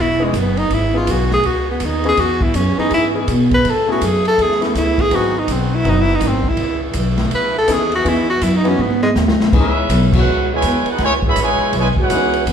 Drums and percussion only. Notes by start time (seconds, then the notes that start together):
0.33 kick, hi-hat pedal, ride
0.57 ride
0.70 kick, ride
1.07 kick, hi-hat pedal, ride
1.31 snare
1.43 kick, ride
1.80 kick, hi-hat pedal, ride
2.04 ride
2.17 kick, ride
2.41 kick
2.54 kick, hi-hat pedal, ride
2.90 kick, ride
3.28 kick, hi-hat pedal, ride
3.51 kick, ride
3.64 kick, ride
4.01 kick, hi-hat pedal, ride
4.25 ride
4.38 kick, ride
4.51 snare
4.62 snare, ride
4.75 kick, snare, hi-hat pedal, ride
4.98 kick, ride
5.11 kick, ride
5.48 kick, hi-hat pedal, ride
5.84 kick, ride
6.21 kick, snare, hi-hat pedal, ride
6.44 kick
6.57 kick, ride
6.93 kick, hi-hat pedal, ride
7.18 snare, ride
7.31 kick, ride
7.68 kick, hi-hat pedal, ride
7.92 ride
8.05 kick, ride
8.41 kick, hi-hat pedal, ride
8.65 ride
8.78 high tom
8.90 high tom
9.03 high tom
9.16 snare, hi-hat pedal
9.28 snare
9.40 snare
9.53 kick, crash
9.89 kick, hi-hat pedal, ride
10.13 kick, crash
10.62 kick, hi-hat pedal, ride
10.86 ride
10.98 kick, snare, ride
11.23 kick
11.36 kick, hi-hat pedal, ride
11.73 kick, ride
11.96 kick
12.10 kick, hi-hat pedal, ride
12.33 ride
12.47 kick, ride